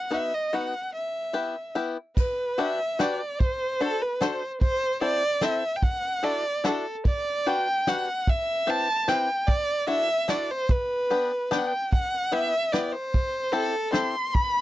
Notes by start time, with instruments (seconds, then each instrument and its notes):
Already playing: violin F#5
0.11 five-string banjo B3 D#4 F#4 B4, violin E5
0.34 violin D#5
0.53 five-string banjo B3 D#4 F#4 B4, violin F#5
0.95 violin E5
1.33 five-string banjo B3 E4 G4 B4
1.75 five-string banjo B3 E4 G4 B4
2.16 violin B4, kick, crash
2.58 five-string banjo D4 F#4 G4 B4, violin E5, closed hi-hat
2.99 five-string banjo D4 F#4 G4 B4, violin D5, snare, closed hi-hat
3.39 violin C5, kick, closed hi-hat
3.80 five-string banjo D4 F#4 A4 C5, violin A4, closed hi-hat
4.02 violin B4
4.21 five-string banjo D4 F#4 A4 C5, violin C5, snare, closed hi-hat
4.61 violin C5, kick, closed hi-hat
5.01 five-string banjo C4 E4 A4 C5, violin D5, closed hi-hat
5.41 five-string banjo C4 E4 A4 C5, violin E5, snare, closed hi-hat
5.76 violin G5
5.83 violin F#5, kick, closed hi-hat
6.23 five-string banjo D4 E4 F#4 A4, violin D5, closed hi-hat
6.64 five-string banjo D4 E4 F#4 A4, violin A4, snare, closed hi-hat
7.05 violin D5, kick, closed hi-hat
7.46 five-string banjo D4 F#4 G4 B4, violin G5, closed hi-hat
7.87 five-string banjo D4 F#4 G4 B4, violin F#5, snare, closed hi-hat
8.27 violin E5, kick, closed hi-hat
8.67 five-string banjo C4 E4 G4 B4, violin A5, closed hi-hat
9.08 five-string banjo C4 E4 G4 B4, violin G5, snare, closed hi-hat
9.46 violin D5, kick, closed hi-hat
9.87 five-string banjo D4 E4 F#4 A4, violin E5, closed hi-hat
10.28 five-string banjo D4 E4 F#4 A4, violin D5, snare, closed hi-hat
10.51 violin C5
10.69 violin B4, kick, closed hi-hat
11.10 five-string banjo B3 D4 G4 B4, closed hi-hat
11.51 five-string banjo B3 D4 G4 B4, violin G5, snare, closed hi-hat
11.58 violin F#5
11.67 violin G5
11.92 violin F#5, kick, closed hi-hat
12.32 five-string banjo B3 E4 G4 B4, violin E5, closed hi-hat
12.72 five-string banjo B3 E4 G4 B4, violin D5, snare, closed hi-hat
12.92 violin C5
13.14 kick, closed hi-hat
13.52 five-string banjo C4 E4 G4 A4, violin A4, closed hi-hat
13.92 five-string banjo C4 E4 G4 A4, violin C6, snare, closed hi-hat
14.34 violin B5, kick, closed hi-hat